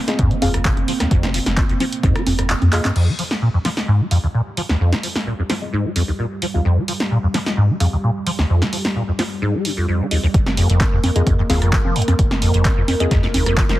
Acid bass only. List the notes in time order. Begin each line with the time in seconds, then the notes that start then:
0.19 G#2
0.31 G#3
0.42 F2
0.54 D#2
0.65 A#2
0.88 F3
1.00 D#2
1.11 F2
1.23 G#3
1.34 F3
1.57 A#2
1.70 F2
1.80 F3
2.03 G#2
2.16 G#3
2.27 F2
2.39 F2
2.50 F2
2.73 F2
2.85 G2
2.95 F2
3.08 G#3
3.19 F3
3.42 A#2
3.54 F2
3.65 F3
3.88 G#2
4.00 G#3
4.11 F2
4.23 D#2
4.34 A#2
4.57 F3
4.69 D#2
4.80 F2
4.93 G#3
5.03 F3
5.26 A#2
5.39 F2
5.50 F3
5.73 G#2
5.85 G#3
5.96 F2
6.08 D#2
6.19 A#2
6.42 F3
6.54 D#2
6.65 F2
6.77 G#3
6.88 F3
7.11 A#2
7.23 F2
7.34 F3
7.57 G#2
7.69 G#3
7.80 F2
7.93 D#2
8.03 A#2
8.26 F3
8.39 D#2
8.50 F2
8.62 G#3
8.73 F3
8.96 A#2
9.08 F2
9.19 F3
9.42 G#2
9.54 G#3
9.65 C3
9.77 F2
9.88 F2
10.00 D#3
10.11 D#2
10.23 D#2
10.57 F2
10.70 F2
10.92 F2
11.03 F2
11.15 F2
11.26 G2
11.39 F2
11.50 D#2
11.62 F2
11.73 F3
11.85 F3
11.96 F2
12.08 F2
12.42 F2
12.54 F2
12.77 F2
12.88 F2
13.00 F2
13.23 F2
13.34 D#2
13.46 F2
13.57 F3
13.69 F3